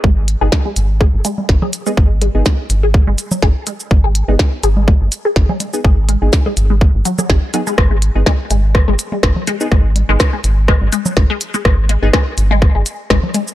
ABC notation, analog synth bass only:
X:1
M:4/4
L:1/16
Q:"Swing 16ths" 1/4=124
K:G#m
V:1 name="Analog synth bass" clef=bass
G,,,3 G,,, z2 G,,,3 G,,, z2 G,,, z3 | G,,,3 G,,, z2 G,,,3 G,,, z2 G,,, z3 | G,,,3 G,,, z2 G,,,3 G,,, z2 G,,, z3 | G,,,3 G,,, z2 G,,,3 G,,, z2 G,,, z3 |
G,,,3 G,,, z2 G,,,3 G,,, z2 G,,, z3 | G,,,3 G,,, z2 G,,,3 G,,, z2 G,,, z3 | G,,,3 G,,, z2 G,,,3 G,,, z2 G,,, z3 |]